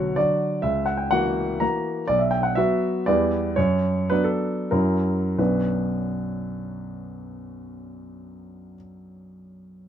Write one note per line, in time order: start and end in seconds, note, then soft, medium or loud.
0.00 0.18 B1 medium
0.00 0.12 D3 soft
0.00 0.13 F#3 soft
0.00 0.13 F#4 soft
0.00 0.18 B4 medium
0.00 0.16 C#5 medium
0.16 0.60 D3 soft
0.16 0.60 F#3 soft
0.16 0.60 F#4 soft
0.16 0.63 D5 medium
0.62 1.10 C#2 soft
0.62 0.87 E5 medium
0.86 0.99 F#5 soft
0.97 1.11 G5 soft
1.11 1.58 E3 soft
1.11 1.58 A#3 soft
1.11 1.58 F#4 medium
1.11 1.61 F#5 medium
1.60 2.05 E3 soft
1.60 2.05 A#3 soft
1.60 2.05 F#4 soft
1.60 2.08 A#5 medium
2.08 2.57 B1 medium
2.08 2.20 D5 medium
2.19 2.32 E5 soft
2.31 2.44 G5 medium
2.43 2.57 F#5 medium
2.55 3.03 F#3 soft
2.55 3.04 B3 soft
2.55 3.04 F#4 medium
2.55 3.07 E5 medium
3.06 3.55 E2 medium
3.06 3.53 G3 soft
3.06 3.53 B3 soft
3.06 3.53 E4 soft
3.06 3.56 D5 medium
3.56 4.09 F#2 medium
3.56 4.10 C#5 medium
4.10 4.69 F#3 soft
4.10 4.69 B3 soft
4.10 4.69 D4 medium
4.10 4.25 B4 medium
4.24 4.72 A4 medium
4.71 5.37 F#2 medium
4.71 5.35 F#3 soft
4.71 5.35 C#4 soft
4.71 5.35 E4 soft
4.71 5.38 A#4 medium
5.38 8.75 B1 soft
5.38 8.75 F#2 soft
5.38 8.75 F#3 soft
5.38 8.76 B3 soft
5.38 8.76 D4 soft
5.38 8.76 F#4 soft
5.38 8.75 B4 soft